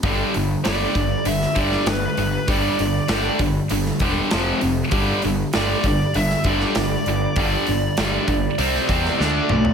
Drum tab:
HH |o-o-o-o-o-o-o-o-|o-o-o-o-o-o-o-o-|o-o-o-o-o-o-o-o-|o-o-o-o-o-o-----|
SD |----o----o-oo---|----o----o--o---|----o----o-oo---|----o----o-oo---|
T2 |----------------|----------------|----------------|--------------o-|
FT |----------------|----------------|----------------|---------------o|
BD |o-----o---o-----|o-----o---o-----|o-----o---o-----|o-----o---o-----|